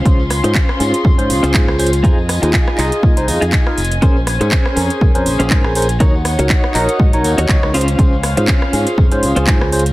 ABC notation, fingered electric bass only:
X:1
M:4/4
L:1/16
Q:"Swing 16ths" 1/4=121
K:Db
V:1 name="Fingered electric bass" clef=bass
D,,3 A,, z2 A,, z F,, A,, D,, D,, A,, D,,3 | F,,3 E,, z2 C,, z B,, C,, F,, F,, z2 F,,,2 | B,,,3 A,, z2 F,, z E,, F,, B,,, B,,, A,, B,,,3 | E,,3 D,, z2 B,,, z A,, B,,, E,, E,, z D,,3 |
D,,3 A,, z2 A,, z F,, A,, D,, D,, A,, D,,3 |]